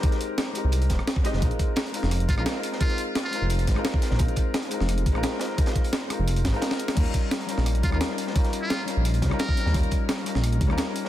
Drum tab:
CC |----------------|----------------|----------------|----------------|
HH |xxx-x-x-xxx-x-x-|xxx-xxx-xxx-x-x-|xxx-x-x-xxx-x-x-|xxx-xxx-xxx-x-x-|
SD |-o--o-----ororoo|----o--or--ro--o|-o--o-----oro-oo|----o--or--ro-o-|
BD |o---------o--o--|o-o-------o-----|o---------o--o--|o-o-------o-----|

CC |----------------|x---------------|----------------|----------------|
HH |xxxxx-x-xxxxxxxx|xxx-xxx-xxx-x-x-|xxx-x-x-xxx-x-x-|xxx-xxx-xxx-x-x-|
SD |-o--o-r---o-oo-o|----o--or--ro--o|-o--o-----oro-oo|----o--or--ro--o|
BD |o-o-------o-----|o-o-------o-----|o---------o--o--|o-o-------o-----|